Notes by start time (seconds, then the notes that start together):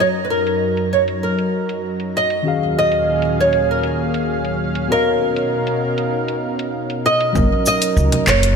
Already playing: F#2 F#3 D#4 F#4 A#4 A#5
0.00 C#5
0.25 B4
0.30 A#4
0.47 closed hi-hat
0.77 closed hi-hat
0.93 C#5
1.08 closed hi-hat
1.23 A#4
1.39 closed hi-hat
1.69 closed hi-hat
2.00 closed hi-hat
2.17 D#5
2.30 closed hi-hat
2.43 D#2 A#2 D#3 C#4 F#4 G#4 F5
2.48 F5
2.79 D#5
2.92 closed hi-hat
3.22 closed hi-hat
3.40 C#5
3.53 closed hi-hat
3.71 A#4
3.83 closed hi-hat
4.14 closed hi-hat
4.45 closed hi-hat
4.75 closed hi-hat
4.88 B2 B3 D#4 F#4 A#4 C#5
4.92 D#5 F5
5.36 closed hi-hat
5.67 closed hi-hat
5.98 closed hi-hat
6.28 closed hi-hat
6.59 closed hi-hat
6.90 closed hi-hat
7.06 D#5
7.21 closed hi-hat
7.33 F#1 F#3 C#4 D#4 A#4, kick, low conga, shaker
7.38 D#5
7.66 D#5, shaker
7.82 closed hi-hat, shaker
7.97 C#2, shaker
8.12 closed hi-hat, low conga
8.27 F#1 C#5, kick, clap, shaker
8.43 closed hi-hat, shaker